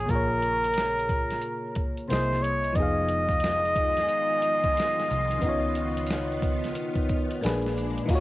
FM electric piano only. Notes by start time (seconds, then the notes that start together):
0.06 A#2 A#3
0.11 F4 G#4
0.15 C#5
2.08 C3 A#3 E4 G#4
2.13 D#5
2.73 F3 B3
2.77 D#4 G#4
2.82 F5
5.39 C#3 B3
5.44 D#4 F4
5.49 C#5
7.41 A#2 A#3 D4 G#4
7.46 B4
8.06 D#3 D#4
8.10 F4 F#4
8.15 C#5